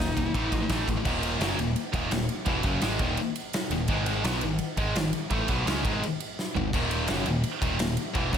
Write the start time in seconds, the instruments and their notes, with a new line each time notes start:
Already playing: lead electric guitar D#4
0.00 picked electric bass D#1, distorted electric guitar D#2 A#2
0.17 picked electric bass D#1, distorted electric guitar D#2 A#2, kick, ride
0.26 distorted electric guitar D#2 A#2
0.34 picked electric bass A1, distorted electric guitar A2 E3 A3, kick, ride
0.52 picked electric bass A1, distorted electric guitar A2 E3, kick, ride
0.63 distorted electric guitar A2 E3
0.69 picked electric bass A1, distorted electric guitar A2 E3 A3, kick, snare, ride
0.87 picked electric bass A1, distorted electric guitar A2 E3, kick, ride
0.97 distorted electric guitar A2 E3
1.05 picked electric bass D#1, distorted electric guitar D#2 A#2 D#3, kick, crash
1.23 ride
1.39 picked electric bass F#1, distorted electric guitar F#2 C#3 F#3, snare, ride
1.58 picked electric bass D#1, distorted electric guitar D#2 A#2, ride
1.76 ride
1.93 picked electric bass D#1, distorted electric guitar D#2 A#2 D#3, kick, ride
2.11 picked electric bass D#1, distorted electric guitar D#2 A#2, snare, ride
2.29 ride
2.46 picked electric bass E1, distorted electric guitar E2 B2 E3, kick, ride
2.63 picked electric bass F#1, distorted electric guitar F#2 C#3 F#3, kick, ride
2.81 picked electric bass G#1, distorted electric guitar G#2 D#3 G#3, snare, ride
2.99 picked electric bass D#1, distorted electric guitar D#2 A#2 D#3, kick, ride
3.17 ride
3.36 ride
3.53 snare, ride
3.70 picked electric bass D#1, distorted electric guitar D#2 A#2, ride
3.88 picked electric bass G#1, distorted electric guitar G#2 D#3 G#3, kick, ride
4.06 ride
4.23 picked electric bass B1, distorted electric guitar B2 F#3 B3, snare, ride
4.41 picked electric bass G#1, distorted electric guitar G#2 D#3, ride
4.58 ride
4.77 picked electric bass G#1, distorted electric guitar G#2 D#3 G#3, kick, ride
4.95 picked electric bass G#1, distorted electric guitar G#2 D#3, snare, ride
5.13 ride
5.30 picked electric bass A1, distorted electric guitar A2 E3 A3, kick, ride
5.48 picked electric bass B1, distorted electric guitar B2 F#3 B3, kick, ride
5.66 picked electric bass C#2, distorted electric guitar C#3 G#3 C#4, snare, ride
5.84 picked electric bass G#1, distorted electric guitar G#2 D#3 G#3, kick, ride
6.03 ride
6.20 ride
6.39 snare
6.55 picked electric bass G#1, distorted electric guitar G#2 D#3, floor tom
6.73 picked electric bass D#1, distorted electric guitar D#2 A#2 D#3, kick, crash
6.91 ride
7.08 picked electric bass F#1, distorted electric guitar F#2, snare, ride
7.12 distorted electric guitar C#3 F#3
7.26 picked electric bass D#1, distorted electric guitar D#2 A#2, ride
7.44 ride
7.62 picked electric bass D#1, distorted electric guitar D#2 A#2 D#3, kick, ride
7.79 picked electric bass D#1, distorted electric guitar D#2 A#2, snare, ride
7.97 ride
8.14 picked electric bass E1, distorted electric guitar E2 B2 E3, kick, ride
8.33 picked electric bass F#1, distorted electric guitar F#2 C#3 F#3, kick, ride